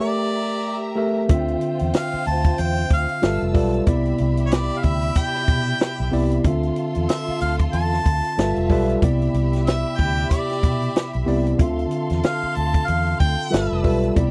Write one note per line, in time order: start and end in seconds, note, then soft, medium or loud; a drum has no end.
0.00 0.79 A3 medium
0.00 0.80 G4 medium
0.00 1.26 G4 medium
0.00 0.80 A#4 medium
0.00 0.93 D5 medium
0.00 1.27 E5 medium
0.00 0.80 E5 medium
0.00 1.27 A#5 medium
0.95 1.18 A3 medium
0.95 1.19 G4 medium
0.95 1.19 A#4 medium
0.95 1.19 E5 loud
1.28 1.54 D2 loud
1.28 2.12 D3 medium
1.28 2.12 C4 medium
1.28 3.19 F4 medium
1.28 2.12 F4 medium
1.28 3.18 C5 medium
1.28 2.13 E5 medium
1.28 3.18 G5 medium
1.28 kick loud
1.28 closed hi-hat medium
1.48 closed hi-hat soft
1.61 closed hi-hat medium
1.79 1.91 E2 medium
1.79 closed hi-hat medium
1.94 2.24 F5 medium
1.94 snare loud
1.94 closed hi-hat loud
2.12 muted fingered electric bass stroke soft
2.12 closed hi-hat soft
2.25 2.51 D2 medium
2.25 2.61 A5 loud
2.25 closed hi-hat medium
2.44 kick medium
2.44 closed hi-hat medium
2.58 2.83 E2 loud
2.58 2.91 G5 loud
2.58 closed hi-hat medium
2.76 closed hi-hat soft
2.90 3.05 D2 loud
2.90 3.52 F5 medium
2.90 kick medium
2.90 closed hi-hat medium
3.09 closed hi-hat soft
3.22 3.37 G1 loud
3.22 3.49 G3 medium
3.22 3.49 F4 medium
3.22 3.86 F4 medium
3.22 3.49 A4 medium
3.22 3.50 B4 medium
3.22 3.50 E5 medium
3.22 3.86 A5 medium
3.22 3.86 E6 medium
3.22 snare loud
3.22 closed hi-hat loud
3.41 3.52 F1 medium
3.41 closed hi-hat soft
3.53 3.79 B1 medium
3.53 3.76 G3 medium
3.53 3.76 F4 medium
3.53 3.76 A4 medium
3.53 3.77 B4 medium
3.53 3.77 D5 medium
3.53 kick loud
3.53 open hi-hat medium
3.74 closed hi-hat soft
3.86 4.12 C2 loud
3.86 4.70 C3 medium
3.86 4.70 B3 medium
3.86 4.70 E4 medium
3.86 6.41 G4 medium
3.86 4.71 D5 loud
3.86 6.41 E5 medium
3.86 6.41 B5 loud
3.86 kick loud
3.86 closed hi-hat medium
4.06 closed hi-hat soft
4.18 4.69 C2 loud
4.18 closed hi-hat medium
4.37 closed hi-hat medium
4.46 4.54 C#5 medium
4.52 4.79 D5 medium
4.52 snare loud
4.52 closed hi-hat loud
4.70 closed hi-hat soft
4.77 4.86 F5 medium
4.83 5.09 D2 medium
4.83 5.19 E5 loud
4.83 kick medium
4.83 closed hi-hat medium
5.02 closed hi-hat medium
5.15 6.13 G5 loud
5.15 kick loud
5.15 closed hi-hat loud
5.34 snare soft
5.34 closed hi-hat soft
5.48 5.73 B2 loud
5.48 kick loud
5.48 closed hi-hat medium
5.66 closed hi-hat soft
5.81 snare loud
5.81 closed hi-hat medium
5.98 6.10 B1 medium
5.98 closed hi-hat soft
6.12 6.37 C2 medium
6.12 6.34 C3 loud
6.12 6.34 B3 medium
6.12 6.35 E4 loud
6.12 6.35 D5 loud
6.12 open hi-hat medium
6.32 closed hi-hat soft
6.44 6.69 D2 loud
6.44 7.27 D3 medium
6.44 7.27 C4 medium
6.44 8.34 F4 medium
6.44 7.28 F4 medium
6.44 8.34 A4 medium
6.44 7.28 E5 medium
6.44 8.34 C6 loud
6.44 kick loud
6.44 closed hi-hat medium
6.63 closed hi-hat soft
6.76 closed hi-hat medium
6.95 7.06 E2 medium
6.95 closed hi-hat medium
7.09 7.39 E5 medium
7.09 snare loud
7.09 closed hi-hat loud
7.27 muted fingered electric bass stroke soft
7.27 closed hi-hat soft
7.40 7.66 D2 medium
7.40 7.56 F5 medium
7.40 closed hi-hat medium
7.59 kick medium
7.59 closed hi-hat medium
7.73 7.98 E2 loud
7.73 8.66 A5 loud
7.73 closed hi-hat medium
7.93 snare soft
8.06 8.20 D2 loud
8.06 kick medium
8.06 closed hi-hat medium
8.24 closed hi-hat soft
8.38 8.52 G1 loud
8.38 8.64 G3 medium
8.38 9.01 F4 medium
8.38 8.65 F4 medium
8.38 8.65 A4 medium
8.38 8.65 B4 medium
8.38 9.01 E5 medium
8.38 8.65 E5 medium
8.38 9.01 A5 medium
8.38 snare loud
8.38 closed hi-hat loud
8.56 8.67 F1 medium
8.56 closed hi-hat soft
8.70 8.95 B1 medium
8.70 8.92 G3 loud
8.70 8.92 F4 medium
8.70 8.92 A4 medium
8.70 8.93 B4 medium
8.70 8.93 E5 loud
8.70 kick loud
8.70 open hi-hat medium
8.89 closed hi-hat soft
9.01 9.27 C2 loud
9.01 9.85 C3 medium
9.01 9.85 B3 medium
9.01 9.85 E4 medium
9.01 11.55 G4 medium
9.01 9.86 D5 loud
9.01 11.56 E5 medium
9.01 11.55 B5 medium
9.01 kick loud
9.01 closed hi-hat medium
9.22 closed hi-hat soft
9.34 9.83 C2 medium
9.34 closed hi-hat medium
9.53 snare soft
9.53 closed hi-hat medium
9.67 9.99 E5 loud
9.67 snare loud
9.67 closed hi-hat loud
9.97 10.24 D2 medium
9.97 10.29 G5 loud
9.97 kick medium
9.97 closed hi-hat medium
10.17 closed hi-hat soft
10.29 11.23 D5 medium
10.29 kick loud
10.29 closed hi-hat loud
10.50 snare soft
10.50 closed hi-hat soft
10.63 10.88 B2 medium
10.63 kick medium
10.63 closed hi-hat medium
10.82 closed hi-hat soft
10.96 snare loud
10.96 closed hi-hat loud
11.13 11.25 B1 medium
11.13 closed hi-hat soft
11.26 11.52 C2 medium
11.26 11.49 C3 loud
11.26 11.49 B3 medium
11.26 11.49 E4 medium
11.26 11.50 D5 loud
11.26 open hi-hat medium
11.47 closed hi-hat medium
11.58 11.84 D2 loud
11.58 12.42 D3 medium
11.58 12.42 C4 medium
11.58 12.43 F4 medium
11.58 13.49 A4 medium
11.58 12.43 E5 medium
11.58 13.49 F5 medium
11.58 13.49 C6 medium
11.58 kick loud
11.58 closed hi-hat medium
11.79 closed hi-hat soft
11.91 closed hi-hat medium
12.10 12.21 E2 medium
12.10 snare soft
12.10 closed hi-hat medium
12.23 12.57 F5 loud
12.23 snare loud
12.23 closed hi-hat medium
12.43 muted fingered electric bass stroke medium
12.55 12.81 D2 medium
12.55 12.88 A5 loud
12.55 closed hi-hat medium
12.74 kick medium
12.74 closed hi-hat medium
12.86 13.13 E2 loud
12.86 13.19 F5 loud
12.86 closed hi-hat loud
13.06 closed hi-hat soft
13.19 13.35 D2 loud
13.19 13.80 G5 loud
13.19 kick medium
13.19 closed hi-hat medium
13.39 closed hi-hat soft
13.51 13.67 G1 loud
13.51 13.78 G3 medium
13.51 13.78 F4 medium
13.51 13.79 A4 medium
13.51 13.79 B4 medium
13.51 14.15 B4 medium
13.51 13.79 E5 medium
13.51 14.15 A5 medium
13.51 14.15 E6 medium
13.51 snare loud
13.51 closed hi-hat loud
13.72 13.82 F1 medium
13.83 14.09 B1 medium
13.83 14.06 G3 medium
13.83 14.06 F4 medium
13.83 14.07 A4 medium
13.83 14.07 B4 medium
13.83 14.07 E5 medium
13.83 kick loud
13.83 open hi-hat medium
14.04 closed hi-hat soft
14.16 14.31 C2 loud
14.16 14.31 C3 medium
14.16 14.31 B3 medium
14.16 14.31 E4 medium
14.16 14.31 G4 medium
14.16 14.31 D5 loud
14.16 14.31 E5 medium
14.16 14.31 B5 medium
14.16 kick loud
14.16 closed hi-hat medium